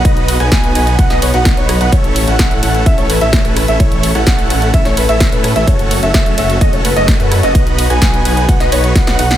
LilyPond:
<<
  \new Staff \with { instrumentName = "Grand piano" } { \time 4/4 \key a \lydian \tempo 4 = 128 dis''8. gis''16 gis''8 gis''8 fis''16 dis''16 cis''16 fis''8 cis''8 fis''16 | cis''8. fis''16 fis''8 fis''8 e''16 cis''16 b'16 e''8 b'8 e''16 | cis''8. fis''16 fis''8 fis''8 e''16 cis''16 b'16 e''8 b'8 e''16 | cis''8. e''16 e''8 e''8 dis''16 cis''16 b'16 dis''8 b'8 dis''16 |
dis''8. gis''16 gis''8 gis''8 fis''16 dis''16 cis''8 fis''16 fis''16 fis''8 | }
  \new Staff \with { instrumentName = "Supersaw synth" } { \time 4/4 \key a \lydian <b dis' fis' b' dis''>8. <b dis' fis' b' gis''>16 <b dis' fis' b' gis''>8 <b dis' fis' b' gis''>8 <b dis' fis' b' fis''>16 <b dis' fis' b' dis''>16 <b dis' fis' b' cis''>16 <b dis' fis' b' fis''>8 <b dis' fis' b' cis''>8 <b dis' fis' b' fis''>16 | <a cis' e' a' cis''>8. <a cis' e' a' fis''>16 <a cis' e' a' fis''>8 <a cis' e' a' fis''>8 <a cis' e' a' e''>16 <a cis' e' a' cis''>16 <a cis' e' a' b'>16 <a cis' e' a' e''>8 <a cis' e' a' b'>8 <a cis' e' a' e''>16 | <a cis' e' a' cis''>8. <a cis' e' a' fis''>16 <a cis' e' a' fis''>8 <a cis' e' a' fis''>8 <a cis' e' a' e''>16 <a cis' e' a' cis''>16 <a cis' e' a' b'>16 <a cis' e' a' e''>8 <a cis' e' a' b'>8 <a cis' e' a' e''>16 | <a cis' fis' a' cis''>8. <a cis' fis' a' e''>16 <a cis' fis' a' e''>8 <a cis' fis' a' e''>8 <a cis' fis' a' dis''>16 <a cis' fis' a' cis''>16 <a cis' fis' a' b'>16 <a cis' fis' a' dis''>8 <a cis' fis' a' b'>8 <a cis' fis' a' dis''>16 |
<b dis' fis' b' dis''>8. <b dis' fis' b' gis''>16 <b dis' fis' b' gis''>8 <b dis' fis' b' gis''>8 <b dis' fis' b' fis''>16 <b dis' fis' b' dis''>16 <b dis' fis' b' cis''>8 <b dis' fis' b' fis''>16 <b dis' fis' b' fis''>16 <b dis' fis' b' fis''>8 | }
  \new Staff \with { instrumentName = "Detuned saw bass" } { \clef bass \time 4/4 \key a \lydian b,,8. b,,16 b,,8 b,,8 b,,16 b,,16 b,,16 b,,8 b,,8 b,,16 | a,,8. a,,16 a,,8 a,,8 a,,16 a,,16 a,,16 a,,8 a,,8 a,,16 | a,,8. a,,16 a,,8 a,,8 a,,16 a,,16 a,,16 a,,8 a,8 a,,16 | fis,,8. fis,,16 fis,,8 fis,,8 fis,,16 fis,,16 fis,,16 fis,,8 fis,8 fis,,16 |
b,,8. b,,16 b,,8 b,,8 b,,16 b,,16 b,,8 b,,16 b,,16 b,,8 | }
  \new DrumStaff \with { instrumentName = "Drums" } \drummode { \time 4/4 <hh bd cymr>16 hh16 <hho cymr>16 <hh ss>16 <hh bd cymr sn>16 hh16 <hho cymr>16 hh16 <hh bd cymr>16 <hh sn>16 <hho cymr>16 hh16 <hh bd cymr sn>16 hh16 <hho cymr ss>16 hh16 | <hh bd cymr>16 hh16 <hho cymr>16 hh16 <hh bd cymr sn>16 hh16 <hho cymr>16 hh16 <hh bd cymr>16 hh16 <hho cymr>16 hh16 <hh bd cymr sn>16 hh16 <hho cymr ss>16 hh16 | <hh bd cymr>16 hh16 <hho cymr>16 <hh ss>16 <hh bd cymr sn>16 hh16 <hho cymr>16 hh16 <hh bd cymr>16 <hh sn>16 <hho cymr>16 hh16 <hh bd cymr sn>16 hh16 <hho cymr ss>16 hh16 | <hh bd cymr>16 hh16 <hho cymr>16 hh16 <hh bd cymr sn>16 hh16 <hho cymr>16 hh16 <hh bd cymr>16 hh16 <hho cymr>16 hh16 <hh bd cymr sn>16 hh16 <hho cymr ss>16 hh16 |
<hh bd cymr>16 hh16 <hho cymr>16 <hh ss>16 <hh bd cymr sn>16 hh16 <hho cymr>16 hh16 <hh bd cymr>16 <hh sn>16 <hho cymr>16 hh16 <hh bd cymr sn>16 <hh sn>16 <hho cymr>16 <hh sn>16 | }
>>